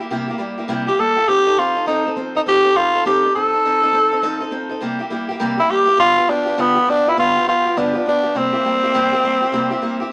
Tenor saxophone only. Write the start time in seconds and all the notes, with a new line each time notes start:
0.88 G4
1.00 A4
1.28 G4
1.58 F4
1.87 D#4
2.37 D#4
2.48 G4
2.76 F4
3.06 G4
3.35 A4
5.59 E4
5.71 G4
6.00 F4
6.30 D4
6.60 B3
6.90 D4
7.09 E4
7.19 F4
7.49 F4
7.78 D4
7.97 D4
8.08 D4
8.37 C4